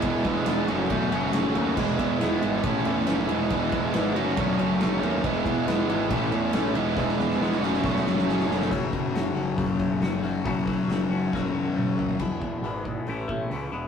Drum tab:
CC |----------------|x---------------|----------------|----------------|
RD |x-x-x-x-x-x-x-x-|--x-x-x-x-x-x-x-|x-x-x-x-x-x-x-x-|x-x-x-x-x-x-x-x-|
HH |----------------|----------------|----------------|----------------|
SD |----o-------o---|----o-------o---|----o-------o---|----o-------o---|
T1 |----------------|----------------|----------------|----------------|
T2 |----------------|----------------|----------------|----------------|
FT |----------------|----------------|----------------|----------------|
BD |o-o-----o-------|o-o-----o-------|o-o-----o-------|o-o-----o-------|

CC |----------------|x---------------|----------------|x---------------|
RD |----------------|----------------|----------------|----------------|
HH |----------------|--o-o-o-o-o-o-o-|o-o-o-o---------|----o---o---o---|
SD |oooooooooooooooo|----o-------o---|----o---o-------|----------------|
T1 |----------------|----------------|----------oo----|----------------|
T2 |----------------|----------------|------------o---|----------------|
FT |----------------|----------------|--------------oo|----------------|
BD |o-------o-------|o-o-----o-o-----|o-o-----o-------|o-o---o---o-----|